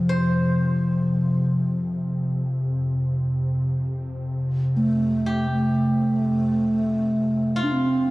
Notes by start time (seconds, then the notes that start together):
Already playing: F2 C3 F3 F5
0.09 C5
4.76 A3
5.26 G4
5.52 A3
7.56 F4
7.63 D4
7.72 C4